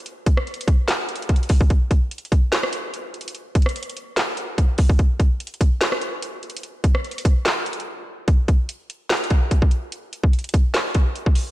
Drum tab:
HH |x-----------x-----------x---x---x---x-----------x-----------x---x---x---x---x---x---o-----------|x-----------x-----------x---x---x---x-----------x-----------x-----------x-----------x---x---x---|x-----------x---x---x---x---x---x---x-----------x-----------x-----------x-----------o-----------|x-----------x-----------x---x---x---x-----------x-----------x-----------x-----------x---x---x---|
CP |------------------------------------------------x-----------------------------------------------|------------------------------------------------x-----------------------------------------------|------------------------------------------------x-----------------------------------------------|------------------------------------------------x-----------------------------------------------|
SD |------------------r-----------------------------o-----------------------------------------------|------------------------------------------------o-----r-----------------------------------------|------------------r-----------------------------o-----------------------------------------------|------------------------------------------------o-----r-----------------------------------------|
BD |------------o-----------------------o-----------------------------------o-----------o-----o-----|o-----------o-----------------------o-----------------------------------------------------------|------------o-----------------------------------------------------------o-----------o-----o-----|o-----------o-----------------------o-----------------------------------------------------------|

HH |x-----------x-----------x---x---x---x-----------x-----------x---x---x---------------------------|x-----------x-----------x-----------x-----------x---x---x---x-----------x-----------x-----------|x-----------x-----------x--x--x--x--x-----------x-----------x-----------x-----------o-----------|
CP |------------------------------------------------x-----------------------------------------------|------------------------------------------------x-----------------------------------------------|------------------------------------------------x-----------------------------------------------|
SD |------------------r-----------------------------o-----------------------------------------------|------------------------------------------------o-----------------------------------------------|------------------------------------------------o-----------------------------------------------|
BD |------------o-----------------------o-----------------------------------------------------------|o-----------o-----------------------------------------------o-----------o-----o-----------------|------------------o-----------------o-----------------------o-----------------o-----------------|